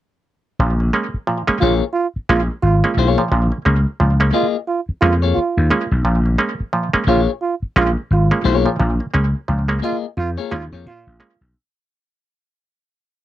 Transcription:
0.59 0.90 A#1 loud
0.59 0.75 A#2 medium
0.59 0.75 F3 medium
0.80 0.86 A#3 soft
0.80 0.86 C#4 soft
0.93 1.08 G#3 medium
0.93 1.08 A#3 medium
0.93 1.09 C#4 medium
1.14 muted slap bass stroke soft
1.27 1.42 A#2 medium
1.27 1.42 F3 medium
1.47 1.58 G#3 medium
1.47 1.58 A#3 medium
1.47 1.58 C#4 medium
1.47 muted slap bass stroke soft
1.61 1.80 A#1 medium
1.61 1.83 A#3 medium
1.61 1.70 A#3 soft
1.61 1.70 C#4 soft
1.61 1.74 F4 loud
1.61 1.83 F4 medium
1.61 1.84 G#4 medium
1.61 1.84 C#5 medium
1.93 2.07 F4 loud
2.16 muted slap bass stroke soft
2.29 2.47 A#1 medium
2.29 2.44 G#3 medium
2.29 2.44 A#3 medium
2.29 2.45 C#4 loud
2.29 2.42 F4 loud
2.62 2.81 G#1 medium
2.62 3.15 F4 loud
2.84 2.94 G#3 medium
2.84 2.94 A#3 medium
2.84 2.94 C#4 medium
2.97 3.15 B1 medium
2.97 3.21 A#3 medium
2.97 3.21 F4 medium
2.97 3.21 G#4 medium
2.97 3.21 C#5 medium
3.18 3.28 A#2 medium
3.18 3.28 F3 medium
3.32 3.50 A#1 loud
3.32 3.47 A#2 medium
3.32 3.47 F3 medium
3.52 3.58 A#3 soft
3.52 3.58 C#4 soft
3.65 3.84 C#2 loud
3.65 3.81 G#3 medium
3.65 3.81 A#3 medium
3.65 3.81 C#4 medium
4.00 4.30 C#2 medium
4.00 4.15 A#2 medium
4.00 4.15 F3 medium
4.20 4.30 G#3 medium
4.20 4.31 A#3 medium
4.20 4.31 C#4 medium
4.33 4.55 A#3 medium
4.33 4.42 A#3 soft
4.33 4.42 C#4 soft
4.33 4.56 F4 medium
4.33 4.47 F4 loud
4.33 4.56 G#4 medium
4.33 4.56 D#5 medium
4.67 4.81 F4 medium
4.89 muted slap bass stroke soft
5.01 5.33 F2 medium
5.01 5.17 G#3 medium
5.01 5.17 A#3 medium
5.01 5.18 C#4 loud
5.01 5.14 F4 loud
5.22 5.39 A#3 medium
5.22 5.39 F4 medium
5.22 5.39 G#4 medium
5.22 5.38 C#5 medium
5.35 5.88 F4 loud
5.35 muted slap bass stroke soft
5.57 5.70 D#2 medium
5.71 5.86 G#3 medium
5.71 5.86 A#3 medium
5.71 5.86 C#4 medium
5.91 6.04 B1 loud
6.05 6.35 A#1 loud
6.05 6.20 A#2 medium
6.05 6.20 F3 medium
6.26 6.31 A#3 soft
6.26 6.31 C#4 soft
6.38 6.54 G#3 medium
6.38 6.54 A#3 medium
6.38 6.54 C#4 medium
6.60 muted slap bass stroke soft
6.73 6.88 A#2 medium
6.73 6.88 F3 medium
6.93 7.04 G#3 medium
6.93 7.04 A#3 medium
6.93 7.04 C#4 medium
6.93 muted slap bass stroke soft
7.07 7.26 A#1 medium
7.07 7.30 A#3 medium
7.07 7.16 A#3 soft
7.07 7.16 C#4 soft
7.07 7.30 F4 medium
7.07 7.22 F4 loud
7.07 7.30 G#4 medium
7.07 7.30 C#5 medium
7.42 7.55 F4 medium
7.62 muted slap bass stroke soft
7.76 7.95 A#1 medium
7.76 7.91 G#3 medium
7.76 7.92 A#3 medium
7.76 7.92 C#4 loud
7.76 7.91 F4 loud
8.11 8.29 G#1 medium
8.11 8.65 F4 medium
8.31 8.42 G#3 medium
8.31 8.42 A#3 medium
8.31 8.42 C#4 medium
8.44 8.64 B1 loud
8.44 8.68 A#3 loud
8.44 8.68 F4 medium
8.44 8.69 G#4 medium
8.44 8.69 C#5 loud
8.66 8.76 A#2 medium
8.66 8.76 F3 medium
8.80 8.98 A#1 loud
8.80 8.95 A#2 medium
8.80 8.95 F3 medium
9.00 9.06 A#3 soft
9.00 9.06 C#4 soft
9.14 9.33 C#2 medium
9.14 9.29 G#3 medium
9.14 9.29 A#3 medium
9.14 9.29 C#4 medium
9.48 9.79 C#2 medium
9.48 9.64 A#2 medium
9.48 9.64 F3 medium
9.68 9.79 G#3 medium
9.68 9.79 A#3 medium
9.68 9.79 C#4 medium
9.82 10.05 A#3 medium
9.82 9.92 A#3 soft
9.82 9.92 C#4 soft
9.82 10.05 F4 medium
9.82 9.97 F4 loud
9.82 10.05 G#4 medium
9.82 10.05 D#5 medium
10.17 10.36 F2 loud
10.17 10.31 F4 loud
10.38 10.54 A#3 medium
10.38 10.54 F4 medium
10.38 10.54 G#4 medium
10.38 10.54 C#5 medium
10.51 10.70 D#2 medium
10.51 10.67 G#3 medium
10.51 10.67 A#3 medium
10.51 10.67 C#4 loud
10.51 10.65 F4 loud
10.72 10.85 F2 medium
10.72 10.85 A#3 soft
10.72 10.85 F4 medium
10.72 10.85 G#4 soft
10.72 10.84 C#5 medium
10.86 11.04 A#2 loud
10.86 11.39 F4 loud
11.07 11.19 A#1 medium
11.20 11.35 G#3 medium
11.20 11.36 A#3 medium
11.20 11.36 C#4 loud
11.41 11.54 B1 medium

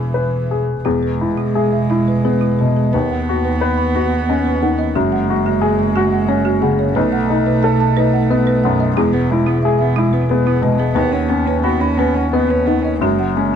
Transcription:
0.00 0.84 E1 soft
0.00 0.82 E2 soft
0.00 0.60 E3 soft
0.00 0.87 B3 soft
0.00 0.88 E4 soft
0.00 0.51 G#4 soft
0.14 0.72 B4 soft
0.51 0.86 G#4 soft
0.84 2.96 E1 soft
0.84 2.89 E2 soft
0.84 2.94 G#3 soft
0.84 0.95 E4 medium
1.03 1.13 B4 soft
1.21 1.76 E4 soft
1.37 1.48 E4 soft
1.55 2.10 G#4 soft
1.55 1.66 E5 soft
1.73 1.83 E5 soft
1.90 2.00 E4 medium
1.90 2.45 E4 soft
2.08 2.18 B4 soft
2.24 2.79 B3 soft
2.24 2.35 G#4 soft
2.41 2.51 E4 soft
2.59 2.94 B2 soft
2.59 2.69 B4 soft
2.77 2.87 G#4 soft
2.93 4.98 D#2 soft
2.93 4.92 D#2 soft
2.93 4.98 B3 medium
2.93 3.03 B4 medium
3.10 3.21 F#5 soft
3.29 3.82 F#4 soft
3.45 3.55 B4 medium
3.61 4.15 B4 soft
3.61 3.71 B5 soft
3.78 3.88 B5 soft
3.95 4.48 F#4 soft
3.95 4.05 B4 medium
4.12 4.22 F#5 soft
4.29 4.83 C#4 soft
4.29 4.39 D#5 soft
4.46 4.55 B4 medium
4.62 4.96 D#3 soft
4.62 4.72 F#5 soft
4.79 4.89 D#5 soft
4.95 6.98 F#1 medium
4.95 6.92 F#2 soft
4.95 6.95 G#3 medium
4.95 5.05 F#4 medium
5.12 5.22 F#5 soft
5.30 5.83 F#4 soft
5.46 5.56 F#4 medium
5.61 6.15 G#4 soft
5.61 5.72 G#5 soft
5.79 5.89 G#5 soft
5.96 6.05 F#4 medium
5.96 6.49 F#4 soft
6.12 6.22 F#5 soft
6.28 6.82 C#4 soft
6.28 6.39 C#5 soft
6.45 6.55 F#4 medium
6.62 6.96 C#3 soft
6.62 6.72 F#5 soft
6.79 6.89 C#5 soft
6.95 8.98 B1 medium
6.95 8.93 B1 medium
6.95 8.93 A3 medium
6.95 7.06 B4 medium
7.12 7.23 F#5 soft
7.30 7.84 D#4 soft
7.46 7.57 B4 medium
7.63 8.18 A4 soft
7.63 7.73 A5 soft
7.80 7.91 A5 medium
7.97 8.51 D#4 soft
7.97 8.07 B4 medium
8.14 8.24 F#5 soft
8.30 8.84 B3 soft
8.30 8.41 D#5 soft
8.47 8.57 B4 medium
8.64 8.97 F#2 soft
8.64 8.74 F#5 medium
8.80 8.90 D#5 medium
8.96 10.96 E1 medium
8.96 10.92 E2 medium
8.96 9.15 G#3 medium
8.96 9.07 E4 medium
9.13 9.32 B3 medium
9.13 9.23 B4 soft
9.30 9.48 G#3 medium
9.30 9.84 E4 soft
9.46 9.63 B3 soft
9.46 9.56 E4 medium
9.62 9.82 G#3 soft
9.62 10.17 G#4 soft
9.62 9.73 E5 soft
9.79 9.98 B3 soft
9.79 9.89 E5 medium
9.96 10.14 G#3 medium
9.96 10.06 E4 medium
9.96 10.50 E4 soft
10.13 10.29 B3 soft
10.13 10.23 B4 medium
10.29 10.48 G#3 soft
10.29 10.83 B3 soft
10.29 10.39 G#4 soft
10.46 10.64 B3 soft
10.46 10.56 E4 medium
10.62 10.95 B2 soft
10.62 10.80 G#3 soft
10.62 10.73 B4 medium
10.78 10.94 B3 soft
10.78 10.89 G#4 soft
10.95 13.02 D#2 medium
10.95 12.97 D#2 medium
10.95 11.13 B3 medium
10.95 11.06 B4 medium
11.12 11.30 C#4 soft
11.12 11.23 F#5 soft
11.28 11.48 B3 soft
11.28 11.85 C#4 soft
11.46 11.62 C#4 soft
11.46 11.58 B4 medium
11.63 11.82 B3 soft
11.63 12.19 F#4 soft
11.63 11.74 B5 soft
11.80 11.99 C#4 soft
11.80 11.91 B5 soft
11.98 12.16 B3 soft
11.98 12.53 C#4 soft
11.98 12.09 B4 medium
12.14 12.32 C#4 soft
12.14 12.26 F#5 soft
12.32 12.50 B3 soft
12.32 12.88 B3 soft
12.32 12.44 D#5 soft
12.49 12.67 C#4 soft
12.49 12.60 B4 medium
12.66 13.01 D#3 soft
12.66 12.84 B3 soft
12.66 12.78 F#5 soft
12.82 12.99 C#4 soft
12.82 12.95 D#5 soft
13.00 13.56 F#1 soft
13.00 13.56 F#2 soft
13.00 13.20 G#3 medium
13.00 13.12 F#4 medium
13.18 13.37 F#3 soft
13.18 13.30 F#5 soft
13.35 13.56 G#3 soft
13.35 13.56 C#4 soft

